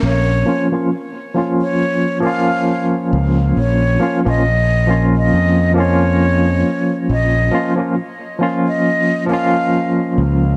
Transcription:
X:1
M:4/4
L:1/16
Q:"Swing 16ths" 1/4=68
K:Bbm
V:1 name="Flute"
d3 z4 d3 f3 z3 | d3 e4 e3 d4- d z | e3 z4 e3 f3 z3 |]
V:2 name="Tine electric piano"
z2 [F,B,DF] [F,B,DF] z2 [F,B,DF]4 [F,B,DF]6- | [F,B,DF]2 [F,B,DF] [F,B,DF] z2 [F,B,DF]4 [F,B,DF]6- | [F,B,DF]2 [F,B,DF] [F,B,DF] z2 [F,B,DF]4 [F,B,DF]6 |]
V:3 name="Fingered electric bass" clef=bass
B,,,2 z12 D,,2 | B,,,2 z B,,,4- B,,, F,,6 z2 | B,,,2 z12 D,,2 |]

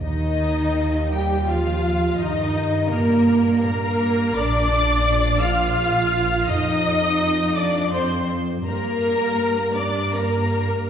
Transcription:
X:1
M:3/4
L:1/8
Q:1/4=83
K:Eblyd
V:1 name="Violin section"
e3 g f2 | e2 B2 b2 | [K:Bb] d'3 f'3 | e'3 d' c' z |
b3 d' b2 |]
V:2 name="Viola section"
E3 G F2 | E2 B,2 B2 | [K:Bb] d3 f3 | e3 d c z |
B3 d B2 |]
V:3 name="Violin section"
E3 G F2 | E2 B,2 B2 | [K:Bb] d3 f3 | e3 d c z |
B3 d B2 |]
V:4 name="Cello section"
E,3 G, F,2 | E,2 B,,2 B,2 | [K:Bb] D3 F3 | E3 D C z |
B,3 D B,2 |]
V:5 name="Double bass section" clef=bass
E,,6 | G,,6 | [K:Bb] B,,,6 | F,,6 |
G,,6 |]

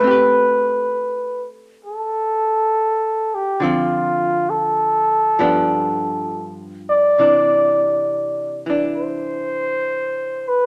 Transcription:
X:1
M:4/4
L:1/8
Q:"Swing" 1/4=67
K:Ador
V:1 name="Flugelhorn"
B3 z A3 G | =F2 A4 z d- | d3 z c3 B |]
V:2 name="Hollow-body jazz guitar"
[A,CGB]8 | [D,=F,C]4 [G,,F,B,D]4 | [C,E,D]3 [E,D]4- [E,D] |]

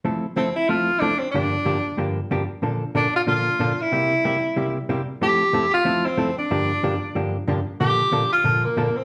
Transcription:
X:1
M:4/4
L:1/8
Q:"Swing" 1/4=186
K:F
V:1 name="Tenor saxophone"
z2 C E F2 D C | D6 z2 | z2 D F F3 E- | E6 z2 |
G3 F2 C2 D- | D4- D z3 | G3 F2 B,2 C |]
V:2 name="Hollow-body jazz guitar"
[F,A,CEA] z [F,A,CEA] z [F,A,CEA] z [F,A,CEA] z | [G,,D,F,B,DG] z [G,,D,F,B,DG] z [G,,D,F,B,DG] z [G,,D,F,B,DG] z | [B,,D,F,B,DA] z [B,,D,F,B,DA] z [B,,D,F,B,DA] z [B,,D,F,B,DA] z | [C,G,B,EG] z [C,G,B,EG] z [C,G,B,EG] z [C,G,B,EG] z |
[F,A,CEA] z [F,A,CEA] z [F,A,CEA] z [F,A,CEA] z | [G,,D,F,B,DG] z [G,,D,F,B,DG] z [G,,D,F,B,DG] z [G,,D,F,B,DG] z | [B,,D,F,B,DA] z [B,,D,F,B,DA] z [B,,D,F,B,DA] z [B,,D,F,B,DA] z |]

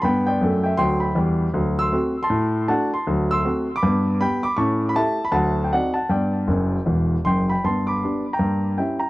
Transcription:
X:1
M:4/4
L:1/16
Q:"Swing" 1/4=158
K:G
V:1 name="Grand piano"
[gb]2 [dg]4 [eg]2 [gc']2 [gb]2 z4 | z2 [c'e']4- [c'e'] [ac']4- [ac'] [fa]2 [ac']2 | z2 [c'e']4- [c'e'] [bd']4- [bd'] [gb]2 [bd']2 | [a^c']3 b [ea]3 b [fa]3 g [df]2 [fa]2 |
[dg]12 [gc']2 [gb]2 | [ac']2 [bd']4- [bd'] [g_b]4- [gb] [eg]2 [gb]2 |]
V:2 name="Grand piano"
[G,,B,]4 [F,,A,]4 [D,,F,]4 [E,,G,]4 | [D,,F,]4 [A,CF]4 A,,4 [A,DF]4 | [D,,F,]4 [A,CF]4 [G,,B,]4 [B,G]4 | [A,,^C]4 [A,EG]4 [D,,F,]4 [=C_EF]4 |
[G,,B,]4 [F,,,F,,]4 [E,,,E,,]4 [F,,,F,,]4 | [G,,B,]4 [B,DG]4 [G,,_B,]4 [_DEG]4 |]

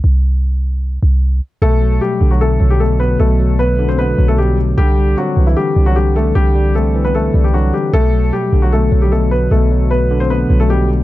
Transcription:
X:1
M:4/4
L:1/16
Q:1/4=152
K:Bphr
V:1 name="Grand piano"
z16 | [A,A]4 [G,G]3 [F,F] [A,A]3 [G,G] [A,A]2 [B,B]2 | [A,A]4 [B,B]3 [Cc] [B,B]3 [A,A] [G,G]2 z2 | [G,G]4 [F,F]3 [E,E] [G,G]3 [F,F] [G,G]2 [A,A]2 |
[G,G]4 [A,A]3 [B,B] [A,A]3 [G,G] [F,F]2 [G,G]2 | [A,A]4 [G,G]3 [F,F] [A,A]3 [G,G] [A,A]2 [B,B]2 | [A,A]4 [B,B]3 [Cc] [B,B]3 [A,A] [G,G]2 z2 |]
V:2 name="Tine electric piano" clef=bass
z16 | B,,2 F,2 A,2 D,2 B,,2 F,2 B,,4 | B,,2 F,2 A,2 D,2 B,,2 F,2 B,,4 | D,2 G,2 C2 E,2 D,2 G,2 D,4 |
D,2 G,2 C2 E,2 D,2 G,2 D,4 | B,,2 F,2 A,2 D,2 B,,2 F,2 B,,4 | B,,2 F,2 A,2 D,2 B,,2 F,2 B,,4 |]
V:3 name="808-style bass" clef=bass
C,,8- C,,2 C,,4 z2 | B,,,4 z2 B,,,4 B,,,6 | B,,,8- B,,,2 B,,,6 | C,,4 z2 C,,2 z2 C,,6 |
C,,8- C,,2 C,,4 z2 | B,,,4 z2 B,,,4 B,,,6 | B,,,8- B,,,2 B,,,6 |]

